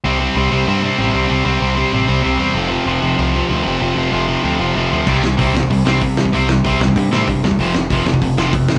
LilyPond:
<<
  \new Staff \with { instrumentName = "Distorted electric guitar" } { \clef bass \time 4/4 \key f \lydian \tempo 4 = 191 <c g c'>8 <c g c'>8 <c g c'>8 <c g c'>8 <c g c'>8 <c g c'>8 <c g c'>8 <c g c'>8 | <c g c'>8 <c g c'>8 <c g c'>8 <c g c'>8 <c g c'>8 <c g c'>8 <c g c'>8 <c g c'>8 | <f, c f>8 <f, c f>8 <f, c f>8 <f, c f>8 <f, c f>8 <f, c f>8 <f, c f>8 <f, c f>8 | <f, c f>8 <f, c f>8 <f, c f>8 <f, c f>8 <f, c f>8 <f, c f>8 <f, c f>8 <f, c f>8 |
<c g c'>8 <c g>8 <c g c'>8 <c g>8 <c g>8 <c g c'>8 <c g>8 <c g>8 | <c g c'>8 <c g>8 <c g c'>8 <c g>8 <c g>8 <c g c'>8 <c g>8 <c g>8 | <f, c f>8 <f, c>8 <f, c f>8 <f, c>8 <f, c>8 <f, c f>8 <f, c>8 <f, c>8 | }
  \new Staff \with { instrumentName = "Overdriven electric guitar" } { \clef bass \time 4/4 \key f \lydian <c g c'>8 <c g c'>8 <c g c'>8 <c g c'>8 <c g c'>8 <c g c'>8 <c g c'>8 <c g c'>8 | <c g c'>8 <c g c'>8 <c g c'>8 <c g c'>8 <c g c'>8 <c g c'>8 <c g c'>8 <c g c'>8 | <f, c f>8 <f, c f>8 <f, c f>8 <f, c f>8 <f, c f>8 <f, c f>8 <f, c f>8 <f, c f>8 | <f, c f>8 <f, c f>8 <f, c f>8 <f, c f>8 <f, c f>8 <f, c f>8 <f, c f>8 <f, c f>8 |
<c g c'>8 <c g>8 <c g c'>8 <c g>8 <c g>8 <c g c'>8 <c g>8 <c g>8 | <c g c'>8 <c g>8 <c g c'>8 <c g>8 <c g>8 <c g c'>8 <c g>8 <c g>8 | <f, c f>8 <f, c>8 <f, c f>8 <f, c>8 <f, c>8 <f, c f>8 <f, c>8 <f, c>8 | }
  \new Staff \with { instrumentName = "Picked electric bass" } { \clef bass \time 4/4 \key f \lydian c,4 c,8 c,8 g,4 a,,8 c,8 | c,8 c,8 c,4 a,,8 c,8 c,8 e,8 | f,,4 f,,8 f,,8 c,4 d,8 f,,8 | f,,8 f,,8 f,,4 d,8 f,,8 f,,8 d,8 |
c,8 c,8 c,8 c,8 c,8 c,8 c4 | c,4 c,8 c,8 g,8 a,8 g,8 e,8 | f,,8 f,,8 f,,8 f,,8 f,,8 f,,8 f,4 | }
  \new DrumStaff \with { instrumentName = "Drums" } \drummode { \time 4/4 r4 r4 r4 r4 | r4 r4 r4 r4 | r4 r4 r4 r4 | r4 r4 r4 r4 |
<cymc bd>8 sn8 <hho bd>8 sn16 bd16 <hho bd>8 sn8 <hho bd>8 sn16 bd16 | <hho bd>8 sn8 <hho bd>8 sn16 bd16 <hho bd>8 sn8 <hho bd>8 sn16 bd16 | <hho bd>8 sn8 <hho bd>8 sn16 bd16 <hho bd>8 sn8 <hho bd>8 sn8 | }
>>